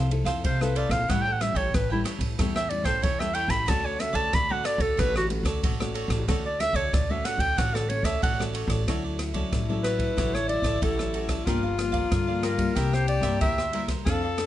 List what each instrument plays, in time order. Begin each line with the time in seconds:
Already playing: upright bass C2, nylon-string guitar F3, cavaquinho C5 F5
0.11 nylon-string guitar C4 E4 A4, muted cavaquinho stroke, ride
0.24 upright bass F2, cavaquinho A4 C5 F5, kick, cross-stick, ride
0.44 upright bass C2, nylon-string guitar C3, cavaquinho E4 A4 C5 F5, clarinet C5, kick, ride
0.61 nylon-string guitar C4 E4 A4, cavaquinho A4 C5 F5, clarinet B4, cross-stick
0.75 cavaquinho E4 A4 C5 F5, clarinet D5, ride
0.89 upright bass A#1, cavaquinho A4 C5 F5, clarinet F5, kick, cross-stick, ride
1.08 upright bass A1, nylon-string guitar A2 G3 C#4 E4, cavaquinho E4 A4 C#5 G5, clarinet F#5, kick, cross-stick, ride
1.21 clarinet G5
1.25 cavaquinho A4 C#5 G5
1.32 clarinet F#5
1.40 nylon-string guitar G3 C#4 E4, clarinet E5, muted cavaquinho stroke, cross-stick, ride
1.54 upright bass A1, cavaquinho A4 C#5 G5, clarinet C#5, kick, ride
1.74 upright bass A1, nylon-string guitar E3, clarinet B4, kick, cross-stick, ride
1.90 nylon-string guitar G3 C#4 E4, clarinet E4, cavaquinho A4 C#5 G5
2.04 cavaquinho E4 A4 C#5 G5, cross-stick, ride
2.19 upright bass A1, kick, ride
2.38 upright bass E2, nylon-string guitar A2 G3 C#4 E4, cavaquinho E4 A4 C#5 G5, kick, cross-stick, ride
2.55 cavaquinho A4 C#5 G5, clarinet E5, cross-stick
2.70 nylon-string guitar G3 C#4 E4, clarinet D5, muted cavaquinho stroke, ride
2.84 upright bass A1, cavaquinho A4 C#5 G5, clarinet C5, kick, cross-stick, ride
3.02 upright bass E2, nylon-string guitar E3, cavaquinho E4 A4 C#5 G5, clarinet C#5, kick, ride
3.19 nylon-string guitar G3 C#4 E4, cavaquinho A4 C#5 G5, clarinet E5, cross-stick
3.33 cavaquinho E4 A4 C#5 G5, clarinet G5, ride
3.48 upright bass A1, cavaquinho A4 C#5 G5, clarinet B5, kick, cross-stick, ride
3.66 upright bass D2, nylon-string guitar D3 A3 C#4, cavaquinho F#4 A4 C#5 D5, clarinet A5, kick, cross-stick, ride
3.70 nylon-string guitar F#4
3.84 cavaquinho A4 C#5 D5, clarinet C#5
3.99 nylon-string guitar A3 C#4 F#4, clarinet E5, muted cavaquinho stroke, cross-stick, ride
4.13 upright bass D2, cavaquinho A4 C#5 D5, clarinet A5, kick, ride
4.33 upright bass D2, nylon-string guitar A2, clarinet B5, kick, cross-stick, ride
4.49 nylon-string guitar A3 C#4 F#4, cavaquinho A4 C#5 D5, clarinet F#5
4.63 cavaquinho F#4 A4 C#5 D5, clarinet D5, cross-stick, ride
4.78 upright bass D2, clarinet A4, kick, ride
4.97 upright bass A1, nylon-string guitar D3 A3 C#4 F#4, cavaquinho F#4 A4 C#5 D5, clarinet B4, kick, cross-stick, ride
5.15 clarinet F#4, cavaquinho A4 C#5 D5, cross-stick
5.30 nylon-string guitar A3 C#4 F#4, muted cavaquinho stroke, ride
5.43 upright bass D2, cavaquinho A4 C#5 D5, kick, cross-stick, ride
5.63 upright bass A1, nylon-string guitar A2, cavaquinho F#4 A4 C#5 D5, kick, ride
5.80 nylon-string guitar A3 C#4 F#4, cavaquinho A4 C#5 D5, cross-stick
5.94 cavaquinho F#4 A4 C#5 D5, ride
6.08 upright bass A1, cavaquinho C#5 D5, kick, cross-stick, ride
6.12 cavaquinho A4
6.28 upright bass D2, nylon-string guitar D3 A3 C#4 F#4, cavaquinho F#4 A4 C#5 D5, kick, cross-stick, ride
6.45 cavaquinho A4 C#5 D5, clarinet D5
6.60 nylon-string guitar A3 C#4 F#4, clarinet E5, muted cavaquinho stroke, cross-stick, ride
6.73 upright bass D2, cavaquinho A4 C#5 D5, clarinet C#5, kick, ride
6.93 upright bass D2, nylon-string guitar A2, clarinet D5, kick, cross-stick, ride
7.10 nylon-string guitar A3 C#4 F#4, cavaquinho A4 C#5 D5, clarinet E5
7.24 cavaquinho F#4 A4 C#5 D5, clarinet F#5, cross-stick, ride
7.38 upright bass D2, clarinet G5, kick, ride
7.57 upright bass A1, nylon-string guitar D3 A3 C#4 F#4, cavaquinho F#4 A4 C#5 D5, clarinet F#5, kick, cross-stick, ride
7.74 clarinet A4, cavaquinho A4 C#5 D5, cross-stick
7.89 nylon-string guitar A3 C#4 F#4, clarinet C#5, muted cavaquinho stroke, ride
8.03 upright bass D2, cavaquinho A4 C#5 D5, clarinet E5, kick, cross-stick, ride
8.22 upright bass A1, nylon-string guitar A2, cavaquinho F#4 A4 C#5 D5, clarinet F#5, kick, ride
8.39 nylon-string guitar A3 C#4 F#4, cavaquinho A4 C#5 D5, cross-stick
8.53 cavaquinho F#4 A4 C#5 D5, ride
8.67 upright bass A1, cavaquinho A4 C#5 D5, kick, cross-stick, ride
8.87 upright bass D2, nylon-string guitar D3 F#3 C#4 E4, tenor saxophone E4, cavaquinho F#4 A4 C#5 D5, kick, cross-stick, ride
9.04 cavaquinho A4 C#5 D5
9.19 muted cavaquinho stroke, cross-stick, ride
9.34 nylon-string guitar F#3 C#4 E4, cavaquinho A4 C#5 D5, kick, ride
9.52 upright bass A1, nylon-string guitar A2, kick, cross-stick, ride
9.69 nylon-string guitar F#3 C#4 E4, cavaquinho A4 C#5 D5
9.84 cavaquinho F#4 A4 C#5 D5, clarinet B4, cross-stick, ride
9.99 kick, ride
10.17 upright bass A1, nylon-string guitar D3 F#3 C#4 E4, cavaquinho F#4 A4 C#5 D5, kick, cross-stick, ride
10.34 cavaquinho A4 C#5 D5, clarinet C#5, cross-stick
10.48 nylon-string guitar F#3 E4, clarinet D5, muted cavaquinho stroke, ride
10.62 upright bass A1, cavaquinho A4 C#5 D5, kick, cross-stick, ride
10.82 upright bass A1, nylon-string guitar A2, cavaquinho F#4 A4 C#5 D5, clarinet A4, kick, ride
10.99 nylon-string guitar F#3 C#4 E4, cavaquinho A4 C#5 D5, cross-stick
11.14 cavaquinho F#4 A4 C#5 D5, ride
11.29 cavaquinho A4 C#5 D5, kick, cross-stick, ride
11.46 upright bass G1, nylon-string guitar G2 F3 A#3 D4, tenor saxophone F4, cavaquinho G4 A#4 D5 F5, kick, cross-stick, ride
11.63 cavaquinho A#4 D5 F5
11.78 nylon-string guitar F3 A#3 D4, muted cavaquinho stroke, cross-stick, ride
11.92 cavaquinho A#4 D5 F5, kick, ride
12.11 upright bass G2, nylon-string guitar D3, kick, cross-stick, ride
12.27 nylon-string guitar F3 A#3 D4, cavaquinho A#4 D5 F5
12.43 cavaquinho G4 A#4 D5 F5, clarinet A#4, cross-stick, ride
12.58 nylon-string guitar G3 A#3 E4, kick, ride
12.75 upright bass C2, nylon-string guitar C3, cavaquinho E4 A#4 C5 E5, tenor saxophone G4, kick, cross-stick, ride
12.93 cavaquinho A#4 C5 E5, clarinet C5, cross-stick
13.08 clarinet D5, muted cavaquinho stroke, ride
13.21 upright bass G2, nylon-string guitar G3 A#3 E4, cavaquinho A#4 C5 E5, kick, cross-stick, ride
13.41 upright bass D2, nylon-string guitar G2, cavaquinho E4 A#4 C5 E5, clarinet E5, kick, ride
13.58 cavaquinho A#4 C5 E5, cross-stick
13.72 nylon-string guitar G3 A#3 E4, cavaquinho E4 A#4 C5 E5, ride
13.88 cavaquinho A#4 C5 E5, kick, cross-stick, ride
14.05 upright bass F2, nylon-string guitar F3 C4 D4 A4, cavaquinho D4 A4 D5 F5, tenor saxophone A4, kick, cross-stick, ride
14.23 cavaquinho A4 D5 F5
14.37 nylon-string guitar C4 D4 A4, muted cavaquinho stroke, cross-stick, ride